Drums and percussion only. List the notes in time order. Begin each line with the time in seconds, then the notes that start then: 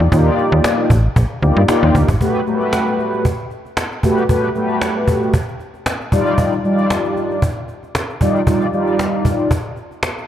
0.12 cajon bass
0.38 cajon slap
0.64 cajon slap
0.90 cajon bass
1.16 cajon bass
1.42 cajon slap
1.68 cajon slap
1.95 cajon bass
2.08 cajon bass
2.21 cajon bass
2.34 cajon slap
2.46 cajon slap
2.60 cajon slap
2.73 cajon slap
2.86 cajon slap
2.99 cajon slap
3.13 cajon slap
3.25 cajon bass
3.39 cajon slap
3.50 cajon slap
3.65 cajon slap
3.77 cajon slap
3.91 cajon slap
4.03 cajon bass
4.17 cajon slap
4.29 cajon bass
4.43 cajon slap
4.55 cajon slap
4.69 cajon slap
4.81 cajon slap
4.95 cajon slap
5.08 cajon bass
5.22 cajon slap
5.34 cajon bass
5.48 cajon slap
5.59 cajon slap
5.74 cajon slap
5.86 cajon slap
6.01 cajon slap
6.12 cajon bass
6.26 cajon slap
6.38 cajon bass
6.52 cajon slap
6.64 cajon slap
6.78 cajon slap
6.90 cajon slap
7.04 cajon slap
7.16 cajon slap
7.31 cajon slap
7.42 cajon bass
7.56 cajon slap
7.68 cajon slap
7.83 cajon slap
7.95 cajon slap
8.09 cajon slap
8.21 cajon bass
8.35 cajon slap
8.47 cajon bass
8.61 cajon slap
8.73 cajon slap
8.87 cajon slap
8.99 cajon slap
9.13 cajon slap
9.25 cajon bass
9.39 cajon slap
9.51 cajon bass
9.64 cajon slap
9.76 cajon slap
9.91 cajon slap
10.03 cajon slap
10.17 cajon slap